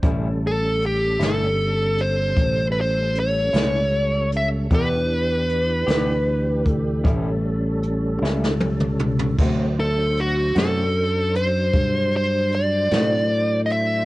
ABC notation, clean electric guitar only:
X:1
M:12/8
L:1/8
Q:3/8=51
K:Amix
V:1 name="Clean electric guitar"
[A,,G,CE] z2 [A,,G,CE] z4 z [A,,G,CE] z2 | [E,B,DG] z2 [E,B,DG] z2 [A,,G,CE] z2 [A,,G,CE] z2 | [D,A,=CF] z2 [D,A,CF] z4 z [D,A,CF] z2 |]